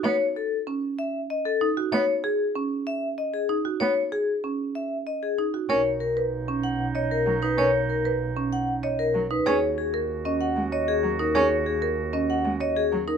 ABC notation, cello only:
X:1
M:6/4
L:1/8
Q:1/4=191
K:E
V:1 name="Cello"
B, z8 z3 | B, z8 z3 | B, z8 z3 | [K:B] C z8 z F, z |
C z8 z F, z | C z6 G, z2 F, z | C z6 G, z2 F, z |]